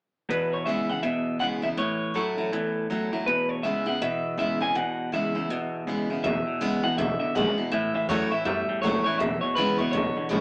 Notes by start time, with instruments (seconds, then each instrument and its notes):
0.29 clean electric guitar E2 B2 B4, steel-string acoustic guitar E2
0.53 clean electric guitar C#5
0.66 clean electric guitar E2 C#3 E5, steel-string acoustic guitar E3 G#3 B3 E4
0.89 clean electric guitar E2 C#3 F#5, steel-string acoustic guitar B3 E4
1.03 clean electric guitar E2 B2 E5, steel-string acoustic guitar B2
1.39 clean electric guitar E2 C#3 F#5, steel-string acoustic guitar E3 G#3 B3 E4
1.62 clean electric guitar E2 C#3 E5, steel-string acoustic guitar B3 E4
1.77 clean electric guitar A2 E3 C#5, steel-string acoustic guitar A2
2.14 clean electric guitar A2 F#3 A4, steel-string acoustic guitar E3 A3 C#4 E4
2.38 clean electric guitar A2 F#3, steel-string acoustic guitar C#4 E4
2.53 steel-string acoustic guitar E2, clean electric guitar A2 E3
2.90 clean electric guitar A2 F#3, steel-string acoustic guitar E3 A3 C#4 E4
3.12 clean electric guitar A2 F#3, steel-string acoustic guitar C#4 E4
3.26 clean electric guitar E2 B2 B4, steel-string acoustic guitar E2
3.49 clean electric guitar C#5
3.63 clean electric guitar E2 C#3 E5, steel-string acoustic guitar E3 G#3 B3 E4
3.86 clean electric guitar E2 C#3 F#5, steel-string acoustic guitar B3 E4
4.02 clean electric guitar E2 B2 E5, steel-string acoustic guitar B2
4.38 clean electric guitar E2 C#3 E5, steel-string acoustic guitar E3 G#3 B3 E4
4.61 clean electric guitar E2 C#3 G#5, steel-string acoustic guitar B3 E4
4.75 clean electric guitar E2 B2 F#5, steel-string acoustic guitar E2
5.12 clean electric guitar E2 C#3 E5, steel-string acoustic guitar E3 G#3 B3 E4
5.35 clean electric guitar E2 C#3, steel-string acoustic guitar B3 E4
5.49 clean electric guitar E2 B2, steel-string acoustic guitar B2
5.87 clean electric guitar E2 C#3, steel-string acoustic guitar E3 G#3 B3 E4
6.10 clean electric guitar E2 C#3, steel-string acoustic guitar B3 E4
6.24 upright bass E1, steel-string acoustic guitar E2, clean electric guitar E2 B2 E5
6.46 clean electric guitar E2 B2, muted upright bass stroke
6.61 upright bass G#1, clean electric guitar E2 C#3, steel-string acoustic guitar E3 G#3 B3 E4
6.83 upright bass C#2, clean electric guitar E2 B2 F#5, steel-string acoustic guitar B3 E4
6.97 upright bass E1, clean electric guitar E2 D3 E5, steel-string acoustic guitar B2
7.20 clean electric guitar E2 D3 E5, muted upright bass stroke
7.35 upright bass G#1, clean electric guitar E2 C#3 F#5, steel-string acoustic guitar E3 G#3 B3 E4
7.57 clean electric guitar E2 B2, steel-string acoustic guitar B3 E4, muted upright bass stroke
7.72 upright bass A1, steel-string acoustic guitar A2, clean electric guitar A2 E3 E5
7.94 upright bass C#2, clean electric guitar A2 E3 E5
8.08 upright bass E2, clean electric guitar A2 F#3 C#5, steel-string acoustic guitar E3 A3 C#4 E4
8.31 clean electric guitar A2 E3 E5, steel-string acoustic guitar C#4 E4, muted upright bass stroke
8.45 steel-string acoustic guitar E2, upright bass F#2, clean electric guitar A2 G3 E5
8.68 clean electric guitar A2 G3, muted upright bass stroke
8.82 upright bass F#1, clean electric guitar A2 F#3 C#5, steel-string acoustic guitar E3 A3 C#4 E4
9.04 clean electric guitar A2 E3 C#5, steel-string acoustic guitar C#4 E4, muted upright bass stroke
9.19 upright bass E1, steel-string acoustic guitar E2, clean electric guitar E2 B2 E5
9.41 clean electric guitar E2 B2 C#5, muted upright bass stroke
9.55 upright bass G#1, clean electric guitar E2 C#3 B4, steel-string acoustic guitar E3 G#3 B3 E4
9.78 upright bass C#2, clean electric guitar E2 B2 C#5, steel-string acoustic guitar B3 E4
9.91 upright bass E1, clean electric guitar E2 D3 C#5, steel-string acoustic guitar B2
10.16 clean electric guitar E2 D3, muted upright bass stroke
10.29 upright bass G#1, clean electric guitar E2 C#3, steel-string acoustic guitar E3 G#3 B3 E4